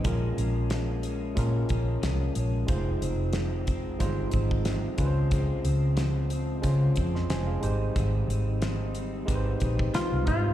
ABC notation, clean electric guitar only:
X:1
M:4/4
L:1/8
Q:"Swing 16ths" 1/4=91
K:Bbdor
V:1 name="Clean electric guitar" clef=bass
[B,,F,A,D] [F,A,D] [B,,F,A,D] [F,A,D] [B,,F,A,D] [F,A,D] [B,,F,A,D] [F,A,D] | [F,,C,E,A,C] [E,A,C] [F,,C,E,A,C] [E,A,C] [C,E,A,C] [E,A,C] [F,,C,E,A,C] [F,A,C] | [D,F,A,C] [F,A,C] [D,F,A,C] [F,A,C] [D,F,A,C] [F,A,C] [D,F,A,C] [G,CE] | [A,,E,G,CE] [G,CE] [A,,E,G,CE] [G,CE] [E,G,CE] [G,CE] [A,,E,G,CE] [G,CE] |]